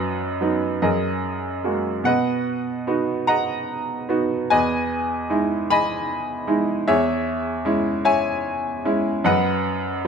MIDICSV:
0, 0, Header, 1, 2, 480
1, 0, Start_track
1, 0, Key_signature, 5, "major"
1, 0, Tempo, 819672
1, 1201, Time_signature, 6, 3, 24, 8
1, 2649, Tempo, 789474
1, 6023, End_track
2, 0, Start_track
2, 0, Title_t, "Grand piano"
2, 0, Program_c, 0, 0
2, 0, Control_c, 0, 64, 127
2, 0, Note_on_c, 0, 42, 61
2, 0, Note_on_c, 0, 66, 52
2, 0, Note_on_c, 0, 71, 55
2, 0, Note_on_c, 0, 75, 70
2, 239, Note_on_c, 0, 54, 43
2, 243, Note_on_c, 0, 59, 39
2, 246, Note_on_c, 0, 63, 49
2, 460, Note_off_c, 0, 42, 0
2, 460, Note_off_c, 0, 71, 0
2, 462, Note_off_c, 0, 66, 0
2, 471, Note_off_c, 0, 75, 0
2, 473, Note_off_c, 0, 54, 0
2, 475, Note_off_c, 0, 59, 0
2, 477, Note_off_c, 0, 63, 0
2, 480, Note_on_c, 0, 75, 61
2, 481, Note_on_c, 0, 42, 53
2, 485, Note_on_c, 0, 70, 43
2, 487, Note_on_c, 0, 68, 44
2, 492, Control_c, 0, 64, 0
2, 611, Control_c, 0, 64, 127
2, 961, Note_on_c, 0, 56, 37
2, 963, Note_on_c, 0, 58, 34
2, 966, Note_on_c, 0, 66, 42
2, 997, Note_off_c, 0, 75, 0
2, 1178, Note_off_c, 0, 42, 0
2, 1178, Note_off_c, 0, 70, 0
2, 1179, Note_off_c, 0, 68, 0
2, 1193, Note_off_c, 0, 56, 0
2, 1194, Note_off_c, 0, 58, 0
2, 1194, Note_on_c, 0, 47, 56
2, 1196, Note_off_c, 0, 66, 0
2, 1201, Note_on_c, 0, 78, 78
2, 1206, Note_on_c, 0, 71, 49
2, 1208, Control_c, 0, 64, 0
2, 1208, Note_on_c, 0, 75, 55
2, 1324, Control_c, 0, 64, 127
2, 1682, Note_on_c, 0, 59, 49
2, 1684, Note_on_c, 0, 66, 48
2, 1685, Note_on_c, 0, 63, 45
2, 1907, Note_off_c, 0, 71, 0
2, 1908, Note_off_c, 0, 75, 0
2, 1913, Note_off_c, 0, 78, 0
2, 1917, Note_on_c, 0, 82, 76
2, 1921, Note_on_c, 0, 78, 59
2, 1923, Note_on_c, 0, 75, 52
2, 2156, Note_off_c, 0, 59, 0
2, 2157, Note_off_c, 0, 63, 0
2, 2157, Note_off_c, 0, 66, 0
2, 2394, Note_on_c, 0, 59, 47
2, 2399, Note_on_c, 0, 66, 52
2, 2400, Note_on_c, 0, 63, 42
2, 2623, Note_off_c, 0, 47, 0
2, 2624, Note_off_c, 0, 78, 0
2, 2625, Note_off_c, 0, 75, 0
2, 2634, Note_off_c, 0, 59, 0
2, 2637, Note_off_c, 0, 63, 0
2, 2637, Note_off_c, 0, 66, 0
2, 2637, Note_on_c, 0, 80, 82
2, 2642, Note_on_c, 0, 40, 64
2, 2642, Note_on_c, 0, 71, 60
2, 2642, Note_on_c, 0, 75, 65
2, 2657, Control_c, 0, 64, 0
2, 2668, Note_off_c, 0, 82, 0
2, 2750, Control_c, 0, 64, 127
2, 3119, Note_on_c, 0, 56, 45
2, 3121, Note_on_c, 0, 63, 46
2, 3125, Note_on_c, 0, 64, 54
2, 3343, Note_off_c, 0, 80, 0
2, 3346, Note_off_c, 0, 71, 0
2, 3346, Note_off_c, 0, 75, 0
2, 3367, Note_on_c, 0, 83, 90
2, 3371, Note_on_c, 0, 80, 61
2, 3374, Note_on_c, 0, 75, 61
2, 3588, Note_off_c, 0, 56, 0
2, 3589, Note_off_c, 0, 63, 0
2, 3591, Note_off_c, 0, 64, 0
2, 3835, Note_on_c, 0, 56, 46
2, 3835, Note_on_c, 0, 63, 45
2, 3838, Note_on_c, 0, 64, 49
2, 4056, Note_off_c, 0, 40, 0
2, 4057, Note_off_c, 0, 83, 0
2, 4059, Note_off_c, 0, 80, 0
2, 4060, Note_off_c, 0, 75, 0
2, 4071, Note_off_c, 0, 56, 0
2, 4071, Note_off_c, 0, 63, 0
2, 4073, Note_off_c, 0, 64, 0
2, 4079, Note_on_c, 0, 76, 82
2, 4081, Note_on_c, 0, 68, 59
2, 4082, Note_on_c, 0, 40, 64
2, 4082, Note_on_c, 0, 73, 63
2, 4092, Control_c, 0, 64, 0
2, 4188, Control_c, 0, 64, 127
2, 4549, Note_on_c, 0, 56, 48
2, 4550, Note_on_c, 0, 61, 46
2, 4556, Note_on_c, 0, 64, 61
2, 4773, Note_off_c, 0, 76, 0
2, 4774, Note_off_c, 0, 68, 0
2, 4775, Note_off_c, 0, 73, 0
2, 4791, Note_on_c, 0, 73, 61
2, 4793, Note_on_c, 0, 76, 57
2, 4794, Note_on_c, 0, 80, 81
2, 5020, Note_off_c, 0, 56, 0
2, 5021, Note_off_c, 0, 61, 0
2, 5024, Note_off_c, 0, 64, 0
2, 5280, Note_on_c, 0, 61, 48
2, 5281, Note_on_c, 0, 56, 47
2, 5283, Note_on_c, 0, 64, 56
2, 5495, Note_off_c, 0, 73, 0
2, 5496, Note_off_c, 0, 76, 0
2, 5499, Note_off_c, 0, 40, 0
2, 5516, Note_off_c, 0, 56, 0
2, 5516, Note_off_c, 0, 61, 0
2, 5517, Note_off_c, 0, 64, 0
2, 5519, Note_on_c, 0, 42, 65
2, 5523, Note_on_c, 0, 75, 57
2, 5526, Note_on_c, 0, 78, 77
2, 5529, Note_on_c, 0, 71, 56
2, 5533, Control_c, 0, 64, 0
2, 5543, Note_off_c, 0, 80, 0
2, 5651, Control_c, 0, 64, 127
2, 6023, Note_off_c, 0, 42, 0
2, 6023, Note_off_c, 0, 71, 0
2, 6023, Note_off_c, 0, 75, 0
2, 6023, Note_off_c, 0, 78, 0
2, 6023, End_track
0, 0, End_of_file